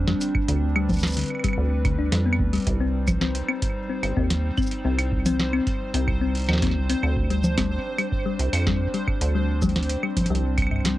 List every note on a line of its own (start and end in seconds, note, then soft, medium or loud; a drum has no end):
0.00 0.15 F2 medium
0.00 6.99 G3 medium
0.00 6.99 C4 medium
0.00 2.63 D4 medium
0.00 0.44 C5 medium
0.08 0.16 G3 loud
0.08 snare loud
0.21 closed hi-hat medium
0.21 cabasa medium
0.35 kick loud
0.35 claves medium
0.48 1.24 D2 loud
0.48 0.54 D3 medium
0.48 2.65 B4 medium
0.48 closed hi-hat medium
0.76 0.84 G3 loud
0.76 claves medium
0.89 kick loud
0.89 closed hi-hat soft
0.89 low conga medium
0.89 cabasa soft
0.93 closed hi-hat soft
0.93 cabasa soft
0.96 closed hi-hat soft
0.96 cabasa soft
1.00 snare loud
1.00 closed hi-hat soft
1.00 cabasa medium
1.03 cabasa medium
1.07 closed hi-hat soft
1.07 cabasa medium
1.10 closed hi-hat soft
1.10 cabasa medium
1.13 1.22 D3 medium
1.13 closed hi-hat medium
1.13 cabasa medium
1.19 closed hi-hat medium
1.21 closed hi-hat medium
1.24 closed hi-hat soft
1.26 closed hi-hat soft
1.28 closed hi-hat soft
1.28 claves soft
1.35 claves soft
1.39 claves soft
1.44 1.52 G3 loud
1.44 kick loud
1.44 closed hi-hat medium
1.44 claves soft
1.49 claves soft
1.53 claves soft
1.58 2.12 D2 medium
1.85 1.93 D3 loud
1.85 kick loud
1.85 closed hi-hat medium
1.85 claves medium
1.99 2.07 D4 medium
2.12 2.41 F2 loud
2.12 2.21 G3 medium
2.12 snare loud
2.12 closed hi-hat medium
2.26 2.34 B3 medium
2.33 claves medium
2.39 2.59 D2 loud
2.39 kick loud
2.53 2.66 G3 medium
2.53 closed hi-hat soft
2.55 closed hi-hat soft
2.58 closed hi-hat soft
2.60 closed hi-hat soft
2.62 closed hi-hat soft
2.64 3.43 C2 loud
2.64 6.99 D#4 medium
2.64 10.98 C5 medium
2.64 kick loud
2.64 closed hi-hat soft
2.67 closed hi-hat medium
2.80 2.89 C4 loud
3.08 kick loud
3.08 closed hi-hat medium
3.08 low conga loud
3.08 cabasa medium
3.08 claves medium
3.21 3.30 C4 medium
3.21 snare loud
3.35 closed hi-hat medium
3.49 3.57 C4 loud
3.49 claves medium
3.62 kick loud
3.62 closed hi-hat medium
3.89 3.98 C4 medium
4.03 4.13 G1 medium
4.03 closed hi-hat medium
4.03 claves medium
4.17 4.52 D#2 medium
4.17 4.25 C4 loud
4.17 kick loud
4.30 snare loud
4.30 closed hi-hat medium
4.58 4.66 C4 medium
4.58 kick loud
4.58 cabasa soft
4.58 claves soft
4.62 cabasa medium
4.67 cabasa medium
4.71 closed hi-hat medium
4.85 5.61 C2 loud
4.85 4.93 C4 loud
4.99 closed hi-hat medium
4.99 claves medium
5.12 kick loud
5.26 5.34 C4 medium
5.26 closed hi-hat medium
5.26 low conga loud
5.26 cabasa medium
5.39 snare loud
5.53 5.61 C4 loud
5.53 claves medium
5.67 kick loud
5.67 closed hi-hat medium
5.94 6.48 C2 medium
5.94 6.02 C4 medium
5.94 closed hi-hat medium
6.08 kick loud
6.08 claves medium
6.21 6.30 C4 loud
6.35 closed hi-hat soft
6.37 closed hi-hat soft
6.39 closed hi-hat soft
6.44 closed hi-hat soft
6.48 6.77 D#2 loud
6.48 snare loud
6.48 claves medium
6.53 snare medium
6.58 snare medium
6.62 6.71 C4 medium
6.62 kick loud
6.62 snare medium
6.62 closed hi-hat medium
6.67 snare soft
6.71 snare soft
6.76 6.96 C2 loud
6.89 6.98 C4 loud
6.89 closed hi-hat medium
7.03 7.79 D2 loud
7.03 10.98 G3 medium
7.03 10.98 C4 medium
7.03 10.98 D4 medium
7.03 claves medium
7.17 kick loud
7.30 7.39 G3 medium
7.30 closed hi-hat medium
7.44 low conga loud
7.44 cabasa medium
7.58 7.66 G3 loud
7.58 kick loud
7.58 snare loud
7.58 closed hi-hat medium
7.58 claves medium
7.99 8.07 G3 medium
7.99 closed hi-hat medium
7.99 claves medium
8.12 kick loud
8.26 8.34 G3 loud
8.39 8.49 C2 medium
8.39 closed hi-hat medium
8.53 8.88 F2 medium
8.53 closed hi-hat medium
8.53 claves medium
8.55 claves soft
8.60 claves soft
8.62 claves soft
8.64 8.75 G3 medium
8.64 kick loud
8.64 snare loud
8.64 claves soft
8.94 9.02 G3 loud
8.94 closed hi-hat soft
9.08 kick loud
9.08 claves medium
9.21 9.97 D2 loud
9.21 closed hi-hat medium
9.35 9.43 G3 medium
9.62 9.71 G3 loud
9.62 kick loud
9.62 closed hi-hat soft
9.62 low conga loud
9.62 cabasa medium
9.69 closed hi-hat soft
9.76 snare loud
9.76 closed hi-hat soft
9.83 closed hi-hat soft
9.89 closed hi-hat medium
10.03 10.11 G3 medium
10.03 claves medium
10.17 kick loud
10.17 closed hi-hat medium
10.17 low conga medium
10.21 low conga medium
10.26 closed hi-hat medium
10.26 low conga medium
10.30 10.98 C2 medium
10.30 10.39 G3 loud
10.30 low conga soft
10.35 closed hi-hat medium
10.35 low conga soft
10.39 low conga soft
10.58 kick loud
10.58 closed hi-hat medium
10.58 claves medium
10.62 claves soft
10.67 claves soft
10.71 10.80 G2 medium
10.71 claves soft
10.76 claves soft
10.80 claves soft
10.85 10.93 G3 loud
10.85 snare loud
10.85 closed hi-hat medium